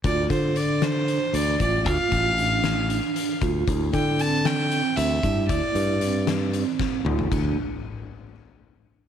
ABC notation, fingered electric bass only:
X:1
M:7/8
L:1/16
Q:1/4=116
K:Dm
V:1 name="Fingered electric bass" clef=bass
D,,2 D,8 D,,2 A,,,2 | D,, z A,,,8 z2 D,,2 | D,,2 D,8 D,,2 G,,2 | D,, z G,,8 z2 D,,2 |
D,,2 z12 |]